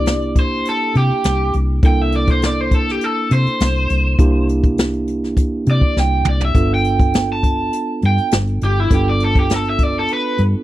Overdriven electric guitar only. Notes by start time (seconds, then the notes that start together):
Already playing: D5
0.39 C5
0.69 A4
0.97 G4
1.86 G5
2.02 E5
2.16 D5
2.31 C5
2.46 D5
2.61 C5
2.74 A4
2.91 G4
3.04 A4
3.33 C5
5.71 D5
5.99 G5
6.29 D5
6.45 E5
6.74 G5
7.32 A5
8.06 G5
8.64 G4
8.80 E4
8.94 G4
9.09 D5
9.24 A4
9.40 G4
9.54 A4
9.70 E5
9.83 D5
9.99 A4
10.13 B4